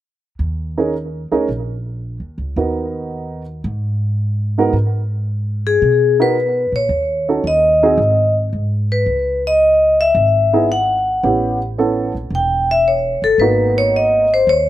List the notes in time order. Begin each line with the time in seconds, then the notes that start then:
0.39 D#2
0.78 C#4 D#4 G#4 A#4
1.31 D2 C#4 D#4 G#4 A#4
1.49 A#1
2.20 D#2
2.38 C#2
2.56 D#2 B3 D#4 F#4 A#4
3.64 G#2
4.58 G#2 B3 D#4 F#4 A#4
4.73 G#2
5.67 G#4
5.82 B2
6.20 B3 D#4 F#4 A#4 B4
6.72 A#2 C#5
6.89 D#2
7.29 C#4 D#4 F#4 A4
7.44 D#2 D#5
7.83 C4 D#4 F#4 G#4
7.98 G#1
8.53 G#2
8.92 B4
9.06 C#2
9.47 D#5
10.01 E5
10.15 G#1
10.53 B3 D#4 E4 G#4
10.72 F#5
11.23 A1 B3 C#4 E4 G4
11.78 B3 C#4 E4 A4
12.15 A#1
12.30 E1
12.35 G5
12.71 E5
12.88 C#5
13.22 G1 A4
13.38 G#1 A#3 B3 D#4 F#4 B4
13.78 C#5
13.96 D#5
14.34 C5
14.47 D#2 C#5